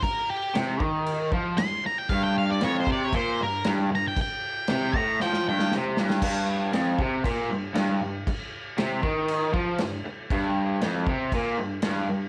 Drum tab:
CC |x---x---x---x---|x---x---x---x---|x---x-----------|x---x---x---x---|
SD |----o-------o---|----o-------o---|----o---oo-oo-oo|----o-------o---|
BD |o-----o---o-----|o-----o-o-------|o-----o---------|o-----o-o-------|

CC |x---x---x---x---|x---x---x---x---|
SD |----o-------o---|----o-------o---|
BD |o-----o---o-----|o-----o-o-------|